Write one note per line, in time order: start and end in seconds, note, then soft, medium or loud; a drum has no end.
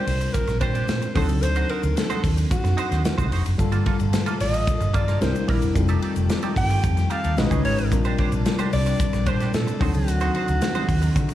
0.00 1.11 G3 medium
0.00 1.12 C4 medium
0.00 1.12 D4 medium
0.00 1.12 F4 medium
0.00 1.13 A#4 medium
0.00 0.35 C5 loud
0.07 0.27 C2 medium
0.07 snare soft
0.07 open hi-hat medium
0.07 ride medium
0.07 shaker soft
0.21 muted clean electric guitar stroke soft
0.21 ride soft
0.21 shaker medium
0.33 0.60 A#4 loud
0.33 muted clean electric guitar stroke soft
0.33 kick loud
0.33 hi-hat pedal medium
0.33 ride medium
0.33 shaker medium
0.47 0.58 A#1 loud
0.47 muted clean electric guitar stroke medium
0.47 snare soft
0.47 ride soft
0.47 shaker soft
0.60 0.82 A#2 medium
0.60 0.75 D4 medium
0.60 0.74 G4 medium
0.60 1.17 C5 loud
0.60 0.74 C5 loud
0.60 kick loud
0.60 ride medium
0.60 shaker medium
0.75 0.87 D4 medium
0.75 0.88 G4 medium
0.75 0.88 D5 medium
0.75 ride soft
0.75 shaker soft
0.88 0.98 A#2 medium
0.88 muted clean electric guitar stroke soft
0.88 snare loud
0.88 ride medium
0.88 shaker medium
1.02 muted clean electric guitar stroke medium
1.02 ride soft
1.02 shaker medium
1.14 1.26 D2 loud
1.14 3.28 F#3 medium
1.14 3.28 C4 medium
1.14 3.28 D4 medium
1.14 1.33 D#4 medium
1.14 3.28 D#4 medium
1.14 1.29 F#4 medium
1.14 1.44 A4 loud
1.14 3.29 A4 medium
1.14 1.28 C5 medium
1.14 kick loud
1.14 open hi-hat medium
1.14 ride medium
1.29 1.43 C#2 loud
1.29 muted clean electric guitar stroke medium
1.29 ride medium
1.29 shaker soft
1.42 1.63 D2 loud
1.42 1.72 C5 loud
1.42 muted clean electric guitar stroke soft
1.42 hi-hat pedal medium
1.42 ride medium
1.42 shaker medium
1.55 1.69 D#4 medium
1.55 1.69 F#4 medium
1.55 1.70 C5 medium
1.55 ride soft
1.55 shaker soft
1.69 1.83 D#4 medium
1.69 1.83 F#4 medium
1.69 1.98 A#4 loud
1.69 1.82 C5 medium
1.69 ride medium
1.83 1.93 D2 loud
1.83 muted clean electric guitar stroke soft
1.83 ride soft
1.83 shaker medium
1.96 2.35 A4 loud
1.96 muted clean electric guitar stroke soft
1.96 snare loud
1.96 ride medium
1.96 shaker medium
2.10 2.22 D#4 medium
2.10 2.23 F#4 medium
2.10 2.24 C5 medium
2.10 ride soft
2.10 shaker soft
2.24 2.44 D#2 loud
2.24 kick medium
2.24 open hi-hat medium
2.24 ride medium
2.24 shaker soft
2.37 muted clean electric guitar stroke soft
2.37 ride soft
2.37 shaker medium
2.51 3.28 F#4 medium
2.51 muted clean electric guitar stroke soft
2.51 kick loud
2.51 hi-hat pedal medium
2.51 ride medium
2.51 shaker medium
2.64 2.74 F#2 medium
2.64 muted clean electric guitar stroke soft
2.64 snare soft
2.64 ride soft
2.64 shaker soft
2.77 2.91 D#4 medium
2.77 2.90 F#4 medium
2.77 2.89 C5 medium
2.77 ride medium
2.77 shaker medium
2.91 3.01 D#2 medium
2.91 3.03 D#4 medium
2.91 3.04 F#4 medium
2.91 3.05 C5 medium
2.91 snare soft
2.91 ride soft
2.91 shaker soft
3.05 muted clean electric guitar stroke medium
3.05 snare loud
3.05 ride medium
3.05 shaker medium
3.18 3.29 C2 loud
3.18 3.30 D#4 medium
3.18 3.31 F#4 medium
3.18 3.32 C5 medium
3.18 kick medium
3.18 ride soft
3.18 shaker medium
3.31 3.42 F1 loud
3.31 3.45 D#4 medium
3.31 3.45 F#4 medium
3.31 3.44 C5 medium
3.31 open hi-hat medium
3.31 ride soft
3.45 3.56 F#1 medium
3.45 muted clean electric guitar stroke soft
3.45 ride soft
3.45 shaker soft
3.58 3.79 G1 loud
3.58 5.20 A#2 medium
3.58 5.18 D3 medium
3.58 5.18 G3 medium
3.58 5.18 A#3 medium
3.58 5.20 F4 medium
3.58 5.18 F4 medium
3.58 5.20 A4 medium
3.58 5.19 A4 medium
3.58 muted clean electric guitar stroke soft
3.58 kick medium
3.58 hi-hat pedal medium
3.58 ride medium
3.58 shaker medium
3.72 3.84 A#3 medium
3.72 3.85 F4 medium
3.72 3.86 A4 medium
3.72 ride soft
3.72 shaker soft
3.85 3.99 A#3 medium
3.85 3.99 F4 medium
3.85 3.98 A4 medium
3.85 kick medium
3.85 ride medium
3.99 4.10 G1 loud
3.99 muted clean electric guitar stroke soft
3.99 ride soft
3.99 shaker medium
4.13 muted clean electric guitar stroke soft
4.13 snare loud
4.13 ride medium
4.13 shaker medium
4.26 4.39 A#3 medium
4.26 4.39 F4 medium
4.26 4.40 A4 medium
4.26 ride soft
4.26 shaker soft
4.40 4.61 A1 medium
4.40 4.97 D#5 loud
4.40 muted clean electric guitar stroke soft
4.40 snare soft
4.40 open hi-hat medium
4.40 ride medium
4.40 shaker soft
4.53 muted clean electric guitar stroke medium
4.53 ride soft
4.53 shaker medium
4.67 muted clean electric guitar stroke soft
4.67 kick loud
4.67 hi-hat pedal medium
4.67 ride medium
4.67 shaker medium
4.80 4.91 G1 medium
4.80 muted clean electric guitar stroke soft
4.80 ride soft
4.80 shaker medium
4.94 5.14 G2 medium
4.94 5.08 A#3 medium
4.94 5.07 F4 medium
4.94 5.07 A4 medium
4.94 5.23 D5 loud
4.94 kick loud
4.94 ride medium
4.94 shaker medium
5.08 5.21 A#3 medium
5.08 5.21 F4 medium
5.08 5.21 A#4 medium
5.08 snare soft
5.08 ride soft
5.08 shaker soft
5.21 5.31 C2 loud
5.21 5.75 D3 medium
5.21 5.73 G3 medium
5.21 5.75 A#3 medium
5.21 5.73 C4 medium
5.21 5.75 D4 medium
5.21 5.75 E4 medium
5.21 5.76 E4 medium
5.21 5.76 A#4 medium
5.21 5.50 C5 medium
5.21 snare loud
5.21 ride medium
5.21 shaker medium
5.35 muted clean electric guitar stroke soft
5.35 ride soft
5.35 shaker medium
5.48 5.59 A#1 loud
5.48 5.66 D4 medium
5.48 5.61 E4 loud
5.48 5.76 A#4 medium
5.48 5.61 A#4 loud
5.48 kick loud
5.48 open hi-hat medium
5.48 ride soft
5.62 5.72 E1 medium
5.62 muted clean electric guitar stroke soft
5.62 ride soft
5.62 shaker medium
5.74 5.96 F1 loud
5.74 7.36 D#3 medium
5.74 7.34 G3 medium
5.74 7.36 A3 medium
5.74 7.34 C4 medium
5.74 7.34 D#4 medium
5.74 7.35 F4 medium
5.74 7.36 G4 medium
5.74 7.35 A4 medium
5.74 muted clean electric guitar stroke soft
5.74 kick loud
5.74 hi-hat pedal medium
5.74 ride medium
5.74 shaker medium
5.88 6.01 D#4 medium
5.88 6.02 G4 medium
5.88 6.03 A4 medium
5.88 ride soft
5.88 shaker soft
6.02 6.16 D#4 medium
6.02 6.16 G4 medium
6.02 6.15 A4 medium
6.02 ride medium
6.16 6.26 F1 loud
6.16 muted clean electric guitar stroke medium
6.16 ride soft
6.16 shaker medium
6.29 muted clean electric guitar stroke soft
6.29 snare loud
6.29 ride medium
6.29 shaker medium
6.42 6.55 D#4 medium
6.42 6.56 G4 medium
6.42 6.56 A4 medium
6.42 ride soft
6.42 shaker soft
6.56 6.76 G1 loud
6.56 7.12 G5 loud
6.56 kick medium
6.56 open hi-hat medium
6.56 ride medium
6.56 shaker soft
6.70 muted clean electric guitar stroke medium
6.70 ride soft
6.70 shaker medium
6.84 7.04 F2 loud
6.84 muted clean electric guitar stroke soft
6.84 kick loud
6.84 hi-hat pedal medium
6.84 ride medium
6.84 shaker medium
6.97 muted clean electric guitar stroke soft
6.97 snare soft
6.97 ride soft
6.97 shaker medium
7.10 7.24 D#4 medium
7.10 7.23 G4 loud
7.10 7.23 A4 loud
7.10 7.40 F5 loud
7.10 ride medium
7.10 shaker medium
7.24 7.34 D#2 medium
7.24 7.37 D#4 medium
7.24 7.38 G4 medium
7.24 7.37 A4 medium
7.24 ride soft
7.24 shaker soft
7.37 7.48 B1 loud
7.37 7.91 C#3 medium
7.37 7.91 G#3 medium
7.37 7.92 C#4 medium
7.37 7.92 D#4 medium
7.37 7.91 D#4 medium
7.37 7.92 F#4 medium
7.37 7.92 B4 medium
7.37 7.64 D#5 medium
7.37 snare loud
7.37 ride medium
7.37 shaker medium
7.51 7.61 C#2 loud
7.51 7.63 C#4 medium
7.51 7.64 D#4 medium
7.51 7.65 G#4 medium
7.51 kick medium
7.51 ride soft
7.51 shaker medium
7.64 7.75 G#1 loud
7.64 7.78 C#4 medium
7.64 7.78 D#4 medium
7.64 7.77 G#4 medium
7.64 7.90 C#5 medium
7.64 open hi-hat medium
7.64 ride medium
7.78 7.92 A1 loud
7.78 muted clean electric guitar stroke medium
7.78 ride soft
7.78 shaker medium
7.91 8.12 A#1 loud
7.91 9.79 C3 medium
7.91 9.77 G3 medium
7.91 9.79 G3 medium
7.91 9.77 C4 medium
7.91 9.77 D4 medium
7.91 9.79 D4 medium
7.91 9.77 F4 medium
7.91 9.78 A#4 medium
7.91 muted clean electric guitar stroke soft
7.91 kick medium
7.91 hi-hat pedal medium
7.91 ride medium
7.91 shaker medium
8.04 8.17 D4 medium
8.04 8.18 G4 medium
8.04 8.19 C5 medium
8.04 ride soft
8.04 shaker soft
8.18 8.32 D4 medium
8.18 8.32 G4 medium
8.18 8.31 C5 medium
8.18 kick medium
8.18 ride medium
8.32 8.42 A#1 loud
8.32 muted clean electric guitar stroke medium
8.32 ride soft
8.32 shaker medium
8.45 muted clean electric guitar stroke soft
8.45 snare loud
8.45 ride medium
8.45 shaker medium
8.59 8.71 D4 medium
8.59 8.72 G4 medium
8.59 8.72 C5 medium
8.59 ride soft
8.59 shaker medium
8.73 8.93 C2 medium
8.73 9.29 D5 loud
8.73 open hi-hat medium
8.73 ride medium
8.73 shaker soft
8.86 muted clean electric guitar stroke medium
8.86 ride soft
8.86 shaker medium
9.00 muted clean electric guitar stroke soft
9.00 kick loud
9.00 hi-hat pedal medium
9.00 ride medium
9.00 shaker medium
9.13 9.23 A#1 medium
9.13 muted clean electric guitar stroke medium
9.13 snare soft
9.13 ride soft
9.13 shaker medium
9.26 9.47 A#2 loud
9.26 9.41 D4 loud
9.26 9.40 G4 medium
9.26 9.54 C5 loud
9.26 9.40 C5 loud
9.26 kick loud
9.26 ride medium
9.26 shaker medium
9.40 9.52 D4 medium
9.40 9.53 G4 medium
9.40 9.54 D5 medium
9.40 snare soft
9.40 ride soft
9.40 shaker soft
9.54 9.64 A#2 medium
9.54 9.96 A4 medium
9.54 muted clean electric guitar stroke soft
9.54 snare loud
9.54 ride medium
9.54 shaker medium
9.67 muted clean electric guitar stroke medium
9.67 ride soft
9.67 shaker medium
9.80 9.91 D2 medium
9.80 11.34 C3 medium
9.80 11.34 D#3 medium
9.80 11.34 F#3 medium
9.80 11.34 C4 medium
9.80 11.34 D4 medium
9.80 9.98 D#4 medium
9.80 11.34 D#4 medium
9.80 9.94 F#4 medium
9.80 11.34 A4 medium
9.80 9.93 C5 medium
9.80 kick loud
9.80 open hi-hat medium
9.80 ride soft
9.94 10.05 C#2 medium
9.94 11.34 F#4 medium
9.94 muted clean electric guitar stroke medium
9.94 ride medium
9.94 shaker soft
10.07 10.28 D2 loud
10.07 muted clean electric guitar stroke soft
10.07 hi-hat pedal medium
10.07 ride medium
10.07 shaker medium
10.20 10.33 D#4 medium
10.20 10.34 F#4 medium
10.20 10.35 C5 medium
10.20 ride medium
10.20 shaker soft
10.34 10.48 D#4 medium
10.34 10.48 F#4 medium
10.34 10.47 C5 medium
10.34 ride medium
10.48 10.58 D2 medium
10.48 muted clean electric guitar stroke medium
10.48 ride soft
10.48 shaker medium
10.61 muted clean electric guitar stroke soft
10.61 snare loud
10.61 ride medium
10.61 shaker medium
10.74 10.87 D#4 medium
10.74 10.88 F#4 medium
10.74 10.88 C5 medium
10.74 ride soft
10.74 shaker soft
10.89 11.09 D#2 medium
10.89 muted clean electric guitar stroke soft
10.89 kick medium
10.89 open hi-hat medium
10.89 ride medium
10.89 shaker soft
11.02 muted clean electric guitar stroke soft
11.02 ride soft
11.02 shaker medium
11.15 11.34 D3 loud
11.15 muted clean electric guitar stroke soft
11.15 kick loud
11.15 hi-hat pedal medium
11.15 ride medium
11.15 shaker medium
11.29 muted clean electric guitar stroke soft
11.29 ride soft
11.29 shaker soft